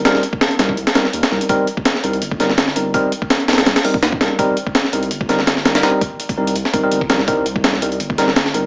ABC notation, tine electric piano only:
X:1
M:4/4
L:1/16
Q:"Swing 16ths" 1/4=166
K:Cm
V:1 name="Tine electric piano"
[G,CEB]2 z4 [G,CEB]2 z2 [G,CEB] z3 [G,CEB]2 | [G,CEB]2 z4 [G,CEB]2 z2 [G,CEB] z3 [G,CEB]2 | [G,CEB]2 z4 [G,CEB]2 z2 [G,CEB] z3 [G,CEB]2 | [G,CEB]2 z4 [G,CEB]2 z2 [G,CEB] z3 [G,CEB]2 |
[G,CEB]2 z4 [G,CEB]2 z2 [G,CEB] [G,CEB]2 z [G,CEB] z | [G,CEB]2 z4 [G,CEB]2 z2 [G,CEB] z3 [G,CEB]2 |]